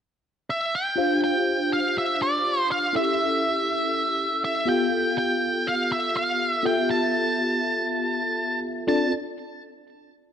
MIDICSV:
0, 0, Header, 1, 3, 480
1, 0, Start_track
1, 0, Tempo, 494234
1, 942, Time_signature, 4, 2, 24, 8
1, 10029, End_track
2, 0, Start_track
2, 0, Title_t, "Lead electric guitar"
2, 0, Program_c, 0, 29
2, 487, Note_on_c, 0, 76, 80
2, 722, Note_off_c, 0, 76, 0
2, 729, Note_on_c, 0, 79, 94
2, 1162, Note_off_c, 0, 79, 0
2, 1203, Note_on_c, 0, 79, 98
2, 1639, Note_off_c, 0, 79, 0
2, 1682, Note_on_c, 0, 77, 77
2, 1918, Note_off_c, 0, 77, 0
2, 1925, Note_on_c, 0, 76, 74
2, 2156, Note_off_c, 0, 76, 0
2, 2160, Note_on_c, 0, 74, 83
2, 2596, Note_off_c, 0, 74, 0
2, 2638, Note_on_c, 0, 77, 92
2, 2873, Note_off_c, 0, 77, 0
2, 2877, Note_on_c, 0, 76, 92
2, 4306, Note_off_c, 0, 76, 0
2, 4318, Note_on_c, 0, 76, 92
2, 4530, Note_off_c, 0, 76, 0
2, 4551, Note_on_c, 0, 79, 97
2, 5021, Note_off_c, 0, 79, 0
2, 5032, Note_on_c, 0, 79, 106
2, 5516, Note_off_c, 0, 79, 0
2, 5517, Note_on_c, 0, 77, 95
2, 5729, Note_off_c, 0, 77, 0
2, 5752, Note_on_c, 0, 76, 92
2, 5986, Note_off_c, 0, 76, 0
2, 5990, Note_on_c, 0, 77, 93
2, 6320, Note_off_c, 0, 77, 0
2, 6320, Note_on_c, 0, 76, 93
2, 6428, Note_off_c, 0, 76, 0
2, 6471, Note_on_c, 0, 79, 105
2, 6686, Note_off_c, 0, 79, 0
2, 6708, Note_on_c, 0, 81, 101
2, 8344, Note_off_c, 0, 81, 0
2, 8629, Note_on_c, 0, 81, 85
2, 8846, Note_off_c, 0, 81, 0
2, 10029, End_track
3, 0, Start_track
3, 0, Title_t, "Tine electric piano"
3, 0, Program_c, 1, 4
3, 927, Note_on_c, 1, 62, 76
3, 934, Note_on_c, 1, 65, 65
3, 939, Note_on_c, 1, 67, 69
3, 948, Note_on_c, 1, 72, 66
3, 948, Note_on_c, 1, 77, 79
3, 1113, Control_c, 1, 64, 127
3, 2812, Note_off_c, 1, 62, 0
3, 2816, Note_off_c, 1, 65, 0
3, 2818, Note_off_c, 1, 67, 0
3, 2823, Note_off_c, 1, 72, 0
3, 2823, Note_off_c, 1, 77, 0
3, 2845, Note_on_c, 1, 61, 62
3, 2849, Note_on_c, 1, 64, 57
3, 2853, Note_on_c, 1, 67, 58
3, 2861, Note_on_c, 1, 69, 63
3, 2867, Note_on_c, 1, 76, 71
3, 2872, Control_c, 1, 64, 0
3, 3041, Control_c, 1, 64, 127
3, 4494, Note_off_c, 1, 61, 0
3, 4496, Note_off_c, 1, 64, 0
3, 4498, Note_off_c, 1, 67, 0
3, 4502, Note_off_c, 1, 69, 0
3, 4505, Note_off_c, 1, 76, 0
3, 4519, Note_on_c, 1, 59, 68
3, 4527, Note_on_c, 1, 65, 58
3, 4530, Note_on_c, 1, 67, 59
3, 4537, Note_on_c, 1, 69, 61
3, 4542, Note_on_c, 1, 77, 69
3, 4547, Control_c, 1, 64, 0
3, 4741, Control_c, 1, 64, 127
3, 6406, Note_off_c, 1, 59, 0
3, 6410, Note_off_c, 1, 65, 0
3, 6412, Note_off_c, 1, 67, 0
3, 6416, Note_off_c, 1, 69, 0
3, 6418, Note_off_c, 1, 77, 0
3, 6437, Note_on_c, 1, 59, 66
3, 6442, Note_on_c, 1, 65, 60
3, 6449, Note_on_c, 1, 67, 59
3, 6454, Note_on_c, 1, 69, 61
3, 6463, Note_on_c, 1, 76, 74
3, 8329, Note_off_c, 1, 59, 0
3, 8331, Note_off_c, 1, 65, 0
3, 8334, Note_off_c, 1, 67, 0
3, 8337, Note_off_c, 1, 69, 0
3, 8342, Note_off_c, 1, 76, 0
3, 8615, Note_on_c, 1, 69, 69
3, 8616, Note_on_c, 1, 60, 79
3, 8617, Note_on_c, 1, 65, 69
3, 8618, Note_on_c, 1, 62, 78
3, 8618, Note_on_c, 1, 74, 85
3, 8627, Control_c, 1, 64, 0
3, 8839, Note_off_c, 1, 60, 0
3, 8839, Note_off_c, 1, 69, 0
3, 8840, Note_off_c, 1, 62, 0
3, 8840, Note_off_c, 1, 65, 0
3, 8841, Note_off_c, 1, 74, 0
3, 10029, End_track
0, 0, End_of_file